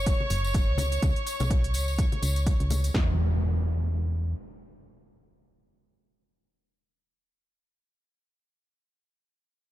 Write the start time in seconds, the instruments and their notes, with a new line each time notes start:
Already playing: fm bass F#1, violin section C#5 C#6
0.06 kick, closed hi-hat, tambourine
0.20 high conga
0.30 fm bass F#1, open hi-hat, tambourine
0.44 tambourine
0.54 kick, closed hi-hat, tambourine
0.68 fm bass C#2
0.78 open hi-hat, tambourine, high conga
0.92 closed hi-hat, tambourine
1.02 fm bass C#2, kick, closed hi-hat, tambourine
1.16 closed hi-hat
1.27 open hi-hat, tambourine
1.40 fm bass B1, closed hi-hat, tambourine, high conga
1.50 kick, closed hi-hat, tambourine
1.64 closed hi-hat
1.74 fm bass C#2, open hi-hat, tambourine
1.88 tambourine
1.98 kick, closed hi-hat, tambourine
2.12 closed hi-hat, high conga
2.23 fm bass C#2, open hi-hat, tambourine
2.36 closed hi-hat, tambourine
2.46 kick, closed hi-hat, tambourine
2.60 fm bass C#2, closed hi-hat
2.70 open hi-hat, tambourine, high conga
2.84 closed hi-hat, tambourine
2.94 fm bass E2, kick, snare, impact